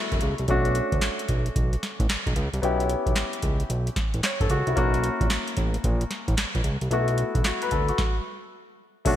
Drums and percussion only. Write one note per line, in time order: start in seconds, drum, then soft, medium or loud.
0.12 kick medium
0.12 closed hi-hat soft
0.21 closed hi-hat medium
0.38 closed hi-hat soft
0.48 kick loud
0.48 closed hi-hat medium
0.65 closed hi-hat soft
0.75 closed hi-hat medium
0.92 kick medium
0.92 closed hi-hat soft
1.01 snare loud
1.01 clap medium
1.01 closed hi-hat medium
1.19 closed hi-hat medium
1.28 kick medium
1.28 closed hi-hat medium
1.46 closed hi-hat soft
1.56 kick loud
1.56 closed hi-hat medium
1.73 closed hi-hat medium
1.83 snare medium
1.83 closed hi-hat medium
2.00 kick medium
2.00 closed hi-hat soft
2.10 snare loud
2.10 clap medium
2.10 closed hi-hat medium
2.26 kick medium
2.26 closed hi-hat soft
2.36 closed hi-hat medium
2.54 closed hi-hat medium
2.63 closed hi-hat medium
2.80 closed hi-hat medium
2.89 closed hi-hat medium
3.06 kick medium
3.06 closed hi-hat soft
3.16 snare loud
3.16 clap medium
3.16 closed hi-hat medium
3.33 closed hi-hat medium
3.42 kick medium
3.42 closed hi-hat medium
3.60 closed hi-hat soft
3.70 closed hi-hat medium
3.87 closed hi-hat medium
3.96 kick medium
3.96 snare medium
3.96 closed hi-hat medium
4.14 closed hi-hat soft
4.23 snare loud
4.23 clap medium
4.23 closed hi-hat medium
4.40 kick medium
4.40 closed hi-hat soft
4.50 closed hi-hat medium
4.67 closed hi-hat medium
4.77 kick loud
4.77 closed hi-hat medium
4.94 closed hi-hat soft
5.04 closed hi-hat medium
5.21 kick loud
5.21 closed hi-hat soft
5.30 snare loud
5.30 clap medium
5.30 closed hi-hat medium
5.48 closed hi-hat medium
5.57 kick medium
5.57 closed hi-hat medium
5.74 closed hi-hat soft
5.84 kick medium
5.84 closed hi-hat medium
6.01 closed hi-hat medium
6.11 snare medium
6.11 closed hi-hat medium
6.28 kick medium
6.28 closed hi-hat soft
6.38 snare loud
6.38 clap medium
6.38 closed hi-hat medium
6.55 kick medium
6.55 closed hi-hat soft
6.64 closed hi-hat medium
6.81 closed hi-hat soft
6.91 closed hi-hat medium
7.08 closed hi-hat soft
7.18 closed hi-hat medium
7.35 kick medium
7.35 closed hi-hat soft
7.44 snare loud
7.44 clap medium
7.44 closed hi-hat medium
7.62 closed hi-hat medium
7.71 kick medium
7.71 closed hi-hat medium
7.88 closed hi-hat soft
7.98 kick loud
7.98 snare medium
9.05 kick loud
9.05 closed hi-hat medium
9.05 crash medium